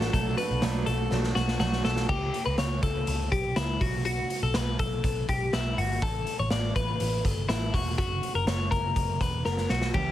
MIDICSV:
0, 0, Header, 1, 5, 480
1, 0, Start_track
1, 0, Key_signature, 2, "minor"
1, 0, Tempo, 490597
1, 130, Time_signature, 4, 2, 24, 8
1, 9898, End_track
2, 0, Start_track
2, 0, Title_t, "Clean electric guitar"
2, 0, Program_c, 0, 27
2, 0, Note_on_c, 0, 69, 90
2, 119, Note_off_c, 0, 69, 0
2, 130, Note_on_c, 0, 69, 83
2, 363, Note_off_c, 0, 69, 0
2, 367, Note_on_c, 0, 71, 75
2, 818, Note_off_c, 0, 71, 0
2, 846, Note_on_c, 0, 69, 72
2, 1297, Note_off_c, 0, 69, 0
2, 1324, Note_on_c, 0, 66, 75
2, 1553, Note_off_c, 0, 66, 0
2, 1564, Note_on_c, 0, 66, 84
2, 1804, Note_off_c, 0, 66, 0
2, 1807, Note_on_c, 0, 69, 72
2, 2041, Note_off_c, 0, 69, 0
2, 2045, Note_on_c, 0, 67, 86
2, 2384, Note_off_c, 0, 67, 0
2, 2403, Note_on_c, 0, 71, 70
2, 2525, Note_off_c, 0, 71, 0
2, 2529, Note_on_c, 0, 73, 59
2, 2763, Note_off_c, 0, 73, 0
2, 2767, Note_on_c, 0, 69, 73
2, 3219, Note_off_c, 0, 69, 0
2, 3246, Note_on_c, 0, 67, 72
2, 3486, Note_on_c, 0, 64, 79
2, 3487, Note_off_c, 0, 67, 0
2, 3727, Note_off_c, 0, 64, 0
2, 3727, Note_on_c, 0, 66, 67
2, 3954, Note_off_c, 0, 66, 0
2, 3965, Note_on_c, 0, 66, 91
2, 4306, Note_off_c, 0, 66, 0
2, 4335, Note_on_c, 0, 69, 70
2, 4450, Note_off_c, 0, 69, 0
2, 4450, Note_on_c, 0, 71, 63
2, 4688, Note_off_c, 0, 71, 0
2, 4692, Note_on_c, 0, 69, 77
2, 5143, Note_off_c, 0, 69, 0
2, 5178, Note_on_c, 0, 67, 70
2, 5414, Note_off_c, 0, 67, 0
2, 5417, Note_on_c, 0, 64, 73
2, 5655, Note_off_c, 0, 64, 0
2, 5657, Note_on_c, 0, 66, 78
2, 5895, Note_off_c, 0, 66, 0
2, 5899, Note_on_c, 0, 69, 100
2, 6234, Note_off_c, 0, 69, 0
2, 6257, Note_on_c, 0, 73, 69
2, 6369, Note_off_c, 0, 73, 0
2, 6373, Note_on_c, 0, 74, 65
2, 6608, Note_off_c, 0, 74, 0
2, 6612, Note_on_c, 0, 71, 80
2, 7086, Note_off_c, 0, 71, 0
2, 7086, Note_on_c, 0, 69, 70
2, 7321, Note_off_c, 0, 69, 0
2, 7325, Note_on_c, 0, 64, 73
2, 7570, Note_off_c, 0, 64, 0
2, 7570, Note_on_c, 0, 66, 69
2, 7798, Note_off_c, 0, 66, 0
2, 7810, Note_on_c, 0, 66, 81
2, 8150, Note_off_c, 0, 66, 0
2, 8172, Note_on_c, 0, 70, 65
2, 8290, Note_off_c, 0, 70, 0
2, 8294, Note_on_c, 0, 73, 64
2, 8518, Note_off_c, 0, 73, 0
2, 8522, Note_on_c, 0, 70, 79
2, 9008, Note_off_c, 0, 70, 0
2, 9008, Note_on_c, 0, 71, 68
2, 9247, Note_off_c, 0, 71, 0
2, 9251, Note_on_c, 0, 70, 73
2, 9491, Note_off_c, 0, 70, 0
2, 9493, Note_on_c, 0, 66, 68
2, 9724, Note_off_c, 0, 66, 0
2, 9728, Note_on_c, 0, 67, 87
2, 9898, Note_off_c, 0, 67, 0
2, 9898, End_track
3, 0, Start_track
3, 0, Title_t, "Steel-string acoustic guitar"
3, 0, Program_c, 1, 25
3, 0, Note_on_c, 1, 57, 58
3, 0, Note_on_c, 1, 62, 64
3, 0, Note_on_c, 1, 66, 73
3, 124, Note_on_c, 1, 47, 68
3, 126, Note_off_c, 1, 57, 0
3, 126, Note_off_c, 1, 66, 0
3, 131, Note_off_c, 1, 62, 0
3, 131, Note_on_c, 1, 54, 77
3, 138, Note_on_c, 1, 57, 81
3, 143, Note_on_c, 1, 62, 77
3, 146, Note_on_c, 1, 66, 84
3, 345, Note_off_c, 1, 66, 0
3, 357, Note_on_c, 1, 66, 63
3, 365, Note_off_c, 1, 62, 0
3, 366, Note_off_c, 1, 47, 0
3, 370, Note_off_c, 1, 54, 0
3, 373, Note_off_c, 1, 57, 0
3, 377, Note_on_c, 1, 62, 55
3, 393, Note_on_c, 1, 57, 49
3, 598, Note_off_c, 1, 57, 0
3, 599, Note_on_c, 1, 47, 88
3, 602, Note_off_c, 1, 66, 0
3, 604, Note_off_c, 1, 62, 0
3, 608, Note_on_c, 1, 54, 98
3, 610, Note_on_c, 1, 57, 95
3, 616, Note_on_c, 1, 62, 101
3, 623, Note_on_c, 1, 66, 96
3, 829, Note_off_c, 1, 66, 0
3, 841, Note_on_c, 1, 66, 55
3, 843, Note_off_c, 1, 47, 0
3, 844, Note_off_c, 1, 62, 0
3, 848, Note_off_c, 1, 54, 0
3, 848, Note_off_c, 1, 57, 0
3, 856, Note_on_c, 1, 62, 52
3, 871, Note_on_c, 1, 57, 47
3, 1081, Note_off_c, 1, 57, 0
3, 1082, Note_on_c, 1, 54, 70
3, 1084, Note_off_c, 1, 66, 0
3, 1091, Note_off_c, 1, 62, 0
3, 1093, Note_on_c, 1, 57, 62
3, 1102, Note_on_c, 1, 62, 70
3, 1114, Note_on_c, 1, 66, 73
3, 1305, Note_off_c, 1, 66, 0
3, 1316, Note_on_c, 1, 66, 54
3, 1324, Note_off_c, 1, 54, 0
3, 1324, Note_off_c, 1, 62, 0
3, 1330, Note_off_c, 1, 57, 0
3, 1336, Note_on_c, 1, 62, 56
3, 1349, Note_on_c, 1, 57, 46
3, 1551, Note_on_c, 1, 47, 77
3, 1553, Note_off_c, 1, 57, 0
3, 1558, Note_off_c, 1, 62, 0
3, 1560, Note_on_c, 1, 54, 82
3, 1562, Note_off_c, 1, 66, 0
3, 1564, Note_on_c, 1, 57, 89
3, 1570, Note_on_c, 1, 62, 81
3, 1575, Note_on_c, 1, 66, 90
3, 1782, Note_off_c, 1, 66, 0
3, 1794, Note_on_c, 1, 66, 53
3, 1799, Note_off_c, 1, 47, 0
3, 1801, Note_off_c, 1, 62, 0
3, 1803, Note_off_c, 1, 54, 0
3, 1806, Note_off_c, 1, 57, 0
3, 1813, Note_on_c, 1, 62, 47
3, 1830, Note_on_c, 1, 57, 53
3, 2040, Note_off_c, 1, 66, 0
3, 2050, Note_off_c, 1, 62, 0
3, 2058, Note_off_c, 1, 57, 0
3, 9716, Note_on_c, 1, 49, 69
3, 9721, Note_on_c, 1, 52, 81
3, 9729, Note_on_c, 1, 61, 76
3, 9732, Note_on_c, 1, 64, 94
3, 9738, Note_on_c, 1, 67, 81
3, 9898, Note_off_c, 1, 49, 0
3, 9898, Note_off_c, 1, 52, 0
3, 9898, Note_off_c, 1, 61, 0
3, 9898, Note_off_c, 1, 64, 0
3, 9898, Note_off_c, 1, 67, 0
3, 9898, End_track
4, 0, Start_track
4, 0, Title_t, "Picked electric bass"
4, 0, Program_c, 2, 34
4, 133, Note_on_c, 2, 35, 101
4, 328, Note_off_c, 2, 35, 0
4, 494, Note_on_c, 2, 35, 79
4, 590, Note_off_c, 2, 35, 0
4, 614, Note_on_c, 2, 35, 97
4, 808, Note_off_c, 2, 35, 0
4, 853, Note_on_c, 2, 35, 79
4, 1047, Note_off_c, 2, 35, 0
4, 1092, Note_on_c, 2, 35, 99
4, 1286, Note_off_c, 2, 35, 0
4, 1331, Note_on_c, 2, 35, 83
4, 1526, Note_off_c, 2, 35, 0
4, 1568, Note_on_c, 2, 35, 98
4, 1764, Note_off_c, 2, 35, 0
4, 1810, Note_on_c, 2, 35, 79
4, 2006, Note_off_c, 2, 35, 0
4, 2047, Note_on_c, 2, 37, 98
4, 2243, Note_off_c, 2, 37, 0
4, 2411, Note_on_c, 2, 37, 82
4, 2508, Note_off_c, 2, 37, 0
4, 2528, Note_on_c, 2, 37, 92
4, 2725, Note_off_c, 2, 37, 0
4, 2768, Note_on_c, 2, 37, 84
4, 2964, Note_off_c, 2, 37, 0
4, 3010, Note_on_c, 2, 37, 98
4, 3206, Note_off_c, 2, 37, 0
4, 3249, Note_on_c, 2, 35, 76
4, 3445, Note_off_c, 2, 35, 0
4, 3492, Note_on_c, 2, 37, 95
4, 3687, Note_off_c, 2, 37, 0
4, 3729, Note_on_c, 2, 35, 90
4, 4123, Note_off_c, 2, 35, 0
4, 4331, Note_on_c, 2, 35, 88
4, 4429, Note_off_c, 2, 35, 0
4, 4454, Note_on_c, 2, 35, 84
4, 4649, Note_off_c, 2, 35, 0
4, 4691, Note_on_c, 2, 35, 85
4, 4888, Note_off_c, 2, 35, 0
4, 4933, Note_on_c, 2, 35, 100
4, 5129, Note_off_c, 2, 35, 0
4, 5175, Note_on_c, 2, 35, 79
4, 5371, Note_off_c, 2, 35, 0
4, 5414, Note_on_c, 2, 35, 99
4, 5610, Note_off_c, 2, 35, 0
4, 5654, Note_on_c, 2, 31, 91
4, 5850, Note_off_c, 2, 31, 0
4, 5893, Note_on_c, 2, 33, 110
4, 6090, Note_off_c, 2, 33, 0
4, 6256, Note_on_c, 2, 33, 92
4, 6353, Note_off_c, 2, 33, 0
4, 6374, Note_on_c, 2, 33, 99
4, 6570, Note_off_c, 2, 33, 0
4, 6612, Note_on_c, 2, 33, 91
4, 6809, Note_off_c, 2, 33, 0
4, 6856, Note_on_c, 2, 33, 93
4, 7051, Note_off_c, 2, 33, 0
4, 7093, Note_on_c, 2, 31, 81
4, 7290, Note_off_c, 2, 31, 0
4, 7331, Note_on_c, 2, 33, 101
4, 7528, Note_off_c, 2, 33, 0
4, 7573, Note_on_c, 2, 28, 91
4, 7770, Note_off_c, 2, 28, 0
4, 7813, Note_on_c, 2, 30, 98
4, 8010, Note_off_c, 2, 30, 0
4, 8169, Note_on_c, 2, 30, 83
4, 8269, Note_off_c, 2, 30, 0
4, 8291, Note_on_c, 2, 30, 94
4, 8488, Note_off_c, 2, 30, 0
4, 8531, Note_on_c, 2, 30, 79
4, 8729, Note_off_c, 2, 30, 0
4, 8770, Note_on_c, 2, 30, 83
4, 8968, Note_off_c, 2, 30, 0
4, 9009, Note_on_c, 2, 28, 72
4, 9207, Note_off_c, 2, 28, 0
4, 9253, Note_on_c, 2, 30, 91
4, 9449, Note_off_c, 2, 30, 0
4, 9492, Note_on_c, 2, 35, 87
4, 9689, Note_off_c, 2, 35, 0
4, 9731, Note_on_c, 2, 37, 98
4, 9898, Note_off_c, 2, 37, 0
4, 9898, End_track
5, 0, Start_track
5, 0, Title_t, "Drums"
5, 10, Note_on_c, 9, 38, 100
5, 108, Note_off_c, 9, 38, 0
5, 132, Note_on_c, 9, 36, 95
5, 136, Note_on_c, 9, 42, 94
5, 230, Note_off_c, 9, 36, 0
5, 233, Note_off_c, 9, 42, 0
5, 370, Note_on_c, 9, 42, 74
5, 467, Note_off_c, 9, 42, 0
5, 607, Note_on_c, 9, 38, 103
5, 616, Note_on_c, 9, 42, 80
5, 705, Note_off_c, 9, 38, 0
5, 714, Note_off_c, 9, 42, 0
5, 846, Note_on_c, 9, 42, 69
5, 944, Note_off_c, 9, 42, 0
5, 1087, Note_on_c, 9, 38, 60
5, 1185, Note_off_c, 9, 38, 0
5, 1210, Note_on_c, 9, 38, 52
5, 1308, Note_off_c, 9, 38, 0
5, 1328, Note_on_c, 9, 38, 70
5, 1426, Note_off_c, 9, 38, 0
5, 1448, Note_on_c, 9, 38, 62
5, 1546, Note_off_c, 9, 38, 0
5, 1564, Note_on_c, 9, 38, 82
5, 1662, Note_off_c, 9, 38, 0
5, 1688, Note_on_c, 9, 38, 67
5, 1786, Note_off_c, 9, 38, 0
5, 1804, Note_on_c, 9, 38, 90
5, 1902, Note_off_c, 9, 38, 0
5, 1922, Note_on_c, 9, 38, 85
5, 2020, Note_off_c, 9, 38, 0
5, 2045, Note_on_c, 9, 49, 74
5, 2046, Note_on_c, 9, 36, 96
5, 2142, Note_off_c, 9, 49, 0
5, 2144, Note_off_c, 9, 36, 0
5, 2289, Note_on_c, 9, 42, 72
5, 2387, Note_off_c, 9, 42, 0
5, 2523, Note_on_c, 9, 38, 111
5, 2532, Note_on_c, 9, 42, 88
5, 2621, Note_off_c, 9, 38, 0
5, 2630, Note_off_c, 9, 42, 0
5, 2766, Note_on_c, 9, 42, 65
5, 2767, Note_on_c, 9, 36, 83
5, 2864, Note_off_c, 9, 36, 0
5, 2864, Note_off_c, 9, 42, 0
5, 3005, Note_on_c, 9, 42, 88
5, 3103, Note_off_c, 9, 42, 0
5, 3249, Note_on_c, 9, 36, 86
5, 3253, Note_on_c, 9, 42, 74
5, 3346, Note_off_c, 9, 36, 0
5, 3351, Note_off_c, 9, 42, 0
5, 3485, Note_on_c, 9, 38, 100
5, 3488, Note_on_c, 9, 42, 81
5, 3583, Note_off_c, 9, 38, 0
5, 3586, Note_off_c, 9, 42, 0
5, 3728, Note_on_c, 9, 36, 94
5, 3728, Note_on_c, 9, 46, 62
5, 3825, Note_off_c, 9, 36, 0
5, 3826, Note_off_c, 9, 46, 0
5, 3965, Note_on_c, 9, 42, 79
5, 4063, Note_off_c, 9, 42, 0
5, 4209, Note_on_c, 9, 42, 68
5, 4307, Note_off_c, 9, 42, 0
5, 4442, Note_on_c, 9, 38, 96
5, 4451, Note_on_c, 9, 42, 89
5, 4540, Note_off_c, 9, 38, 0
5, 4549, Note_off_c, 9, 42, 0
5, 4689, Note_on_c, 9, 42, 67
5, 4690, Note_on_c, 9, 36, 78
5, 4787, Note_off_c, 9, 42, 0
5, 4788, Note_off_c, 9, 36, 0
5, 4930, Note_on_c, 9, 36, 102
5, 4930, Note_on_c, 9, 42, 91
5, 5028, Note_off_c, 9, 36, 0
5, 5028, Note_off_c, 9, 42, 0
5, 5173, Note_on_c, 9, 36, 81
5, 5173, Note_on_c, 9, 42, 68
5, 5270, Note_off_c, 9, 36, 0
5, 5271, Note_off_c, 9, 42, 0
5, 5412, Note_on_c, 9, 38, 96
5, 5415, Note_on_c, 9, 42, 75
5, 5509, Note_off_c, 9, 38, 0
5, 5513, Note_off_c, 9, 42, 0
5, 5657, Note_on_c, 9, 46, 64
5, 5755, Note_off_c, 9, 46, 0
5, 5892, Note_on_c, 9, 36, 97
5, 5892, Note_on_c, 9, 42, 83
5, 5989, Note_off_c, 9, 42, 0
5, 5990, Note_off_c, 9, 36, 0
5, 6131, Note_on_c, 9, 42, 70
5, 6229, Note_off_c, 9, 42, 0
5, 6364, Note_on_c, 9, 38, 112
5, 6373, Note_on_c, 9, 42, 83
5, 6462, Note_off_c, 9, 38, 0
5, 6471, Note_off_c, 9, 42, 0
5, 6612, Note_on_c, 9, 36, 75
5, 6612, Note_on_c, 9, 42, 63
5, 6710, Note_off_c, 9, 36, 0
5, 6710, Note_off_c, 9, 42, 0
5, 6849, Note_on_c, 9, 42, 100
5, 6947, Note_off_c, 9, 42, 0
5, 7092, Note_on_c, 9, 36, 89
5, 7093, Note_on_c, 9, 42, 77
5, 7189, Note_off_c, 9, 36, 0
5, 7191, Note_off_c, 9, 42, 0
5, 7330, Note_on_c, 9, 38, 99
5, 7334, Note_on_c, 9, 42, 81
5, 7428, Note_off_c, 9, 38, 0
5, 7432, Note_off_c, 9, 42, 0
5, 7571, Note_on_c, 9, 36, 76
5, 7575, Note_on_c, 9, 46, 64
5, 7669, Note_off_c, 9, 36, 0
5, 7673, Note_off_c, 9, 46, 0
5, 7811, Note_on_c, 9, 36, 100
5, 7813, Note_on_c, 9, 42, 77
5, 7909, Note_off_c, 9, 36, 0
5, 7911, Note_off_c, 9, 42, 0
5, 8052, Note_on_c, 9, 42, 65
5, 8150, Note_off_c, 9, 42, 0
5, 8290, Note_on_c, 9, 38, 110
5, 8299, Note_on_c, 9, 42, 86
5, 8387, Note_off_c, 9, 38, 0
5, 8397, Note_off_c, 9, 42, 0
5, 8530, Note_on_c, 9, 36, 75
5, 8530, Note_on_c, 9, 42, 67
5, 8628, Note_off_c, 9, 36, 0
5, 8628, Note_off_c, 9, 42, 0
5, 8768, Note_on_c, 9, 36, 99
5, 8768, Note_on_c, 9, 42, 98
5, 8865, Note_off_c, 9, 36, 0
5, 8866, Note_off_c, 9, 42, 0
5, 9008, Note_on_c, 9, 36, 79
5, 9011, Note_on_c, 9, 42, 74
5, 9106, Note_off_c, 9, 36, 0
5, 9109, Note_off_c, 9, 42, 0
5, 9245, Note_on_c, 9, 38, 58
5, 9343, Note_off_c, 9, 38, 0
5, 9367, Note_on_c, 9, 38, 52
5, 9465, Note_off_c, 9, 38, 0
5, 9486, Note_on_c, 9, 38, 84
5, 9583, Note_off_c, 9, 38, 0
5, 9603, Note_on_c, 9, 38, 89
5, 9701, Note_off_c, 9, 38, 0
5, 9726, Note_on_c, 9, 55, 73
5, 9728, Note_on_c, 9, 36, 97
5, 9824, Note_off_c, 9, 55, 0
5, 9826, Note_off_c, 9, 36, 0
5, 9898, End_track
0, 0, End_of_file